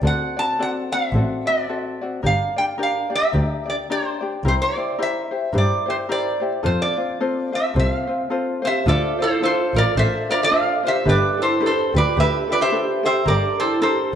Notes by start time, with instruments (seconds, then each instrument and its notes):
0.02 double bass D2, ukulele C4 F#4 A4 D5
0.07 resonator guitar played with a steel bar F#5
0.37 ukulele C4 F#4 D5, resonator guitar played with a steel bar A5
0.59 ukulele C4 F#4 A4 D5, resonator guitar played with a steel bar F#5
0.92 ukulele C4 F#4 D5, resonator guitar played with a steel bar E5
1.13 double bass A1, ukulele C4 F#4 A4 D5
1.46 ukulele C4 F#4 D5, resonator guitar played with a steel bar D5
1.69 ukulele C4 F#4 A4 D5
2.01 ukulele C4 F#4 D5
2.23 double bass G1, ukulele D4 G4 A#4 D5, resonator guitar played with a steel bar F5
2.56 ukulele D4 G4 D5, resonator guitar played with a steel bar G5
2.78 ukulele D4 G4 A#4 D5
2.83 resonator guitar played with a steel bar F5
3.10 ukulele D4 G4 D5
3.15 resonator guitar played with a steel bar E5
3.32 double bass D2, ukulele D4 G4 A#4 D5
3.65 ukulele D4 G4 D5
3.70 resonator guitar played with a steel bar D5
3.90 ukulele D4 G4 A#4 D5, resonator guitar played with a steel bar C5
4.21 ukulele D4 G4 D5
4.44 double bass C2, ukulele E4 G4 A#4 C5
4.48 resonator guitar played with a steel bar C5
4.62 resonator guitar played with a steel bar D5
4.76 ukulele E4 G4 C5
4.98 ukulele E4 G4 A#4 C5
5.02 resonator guitar played with a steel bar E5
5.31 ukulele E4 G4 C5
5.53 double bass G2, ukulele E4 G4 A#4 C5
5.58 resonator guitar played with a steel bar D5
5.86 ukulele E4 G4 C5
5.90 resonator guitar played with a steel bar C5
6.09 ukulele E4 G4 A#4 C5, resonator guitar played with a steel bar D5
6.40 ukulele E4 G4 C5
6.63 double bass F2, ukulele C4 F4 A4 C5, resonator guitar played with a steel bar C5
6.82 resonator guitar played with a steel bar D5
6.97 ukulele C4 F4 C5
7.20 ukulele C4 F4 A4 C5
7.52 ukulele C4 F4 C5, resonator guitar played with a steel bar E5
7.74 double bass C2, ukulele C4 F4 A4 C5
7.79 resonator guitar played with a steel bar F5
8.07 ukulele C4 F4 C5
8.30 ukulele C4 F4 A4 C5
8.62 ukulele C4 F4 C5, resonator guitar played with a steel bar C5
8.67 vibraphone G4, resonator guitar played with a steel bar E5
8.86 double bass D2, ukulele D4 F4 A4 C5, vibraphone F4, resonator guitar played with a steel bar A4 D5
9.18 ukulele D4 F4 C5, vibraphone E4, resonator guitar played with a steel bar A4
9.24 resonator guitar played with a steel bar C5
9.41 ukulele D4 F4 A4 C5, vibraphone F4, resonator guitar played with a steel bar A4
9.45 resonator guitar played with a steel bar C5
9.74 double bass A1, ukulele D4 F4 C5, vibraphone F4, resonator guitar played with a steel bar A#4
9.78 resonator guitar played with a steel bar D5
9.96 double bass A1, ukulele D4 F4 A4 C5, vibraphone A4, resonator guitar played with a steel bar C5 E5
10.29 ukulele D4 F4 C5, vibraphone F4, resonator guitar played with a steel bar A#4 D5
10.42 vibraphone A4, resonator guitar played with a steel bar D5 F5
10.51 ukulele D4 F4 A4 C5
10.83 ukulele D4 F4 C5, vibraphone G4, resonator guitar played with a steel bar C5
10.88 resonator guitar played with a steel bar E5
11.05 double bass G1, ukulele D4 G4 A4 B4, vibraphone G4, resonator guitar played with a steel bar B4
11.09 resonator guitar played with a steel bar D5
11.37 ukulele D4 G4 A4, vibraphone E4
11.42 resonator guitar played with a steel bar A4 C5
11.60 ukulele D4 G4 A4 B4, vibraphone G4
11.66 resonator guitar played with a steel bar A4 C5
11.92 double bass D2, ukulele D4 G4 A4
11.96 vibraphone F4, resonator guitar played with a steel bar B4 D5
12.16 double bass D2, ukulele D4 G4 A4 B4, vibraphone G4
12.20 resonator guitar played with a steel bar B4 E5
12.48 ukulele D4 G4 A4, vibraphone F4, resonator guitar played with a steel bar B4
12.53 resonator guitar played with a steel bar D5
12.61 vibraphone G4, resonator guitar played with a steel bar C5 E5
12.72 ukulele D4 G4 A4 B4
13.03 ukulele D4 G4 A4, vibraphone G4, resonator guitar played with a steel bar C5 E5
13.25 double bass G1, ukulele D4 G4 A4 A#4, resonator guitar played with a steel bar A#4 D5
13.30 vibraphone G4
13.60 ukulele D4 G4 A4, vibraphone E4, resonator guitar played with a steel bar A4 C5
13.82 ukulele D4 G4 A4 A#4, vibraphone G4, resonator guitar played with a steel bar A4 C5